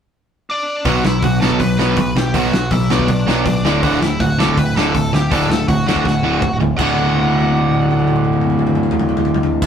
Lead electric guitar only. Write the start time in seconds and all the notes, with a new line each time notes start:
0.50 D4 D5
0.88 F#4 F#5
1.05 E4 E5
1.24 F#4 F#5
1.40 A4 A5
1.60 B4 B5
1.78 B4 B5
2.17 G4 G5
2.36 F#4 F#5
2.72 E4 E5
2.91 D4 D5
3.47 D4 D5
3.83 F#4 F#5
4.02 E4 E5
4.20 F#4 F#5
4.39 A4 A5
4.58 B4 B5
4.76 A4 A5
5.15 G4 G5
5.31 A4 A5
5.68 F#4 F#5
5.87 F#4 F#5
6.77 F#5